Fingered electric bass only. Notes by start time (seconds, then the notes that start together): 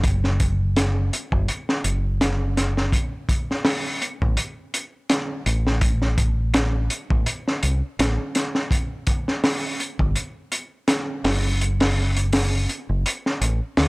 Already playing: F#1
1.32 F#1
1.84 F#1
4.22 A1
5.46 A1
7.11 A1
7.63 C2
7.99 A1
9.99 G1
11.24 F#1
12.89 F#1
13.41 A1
13.77 D2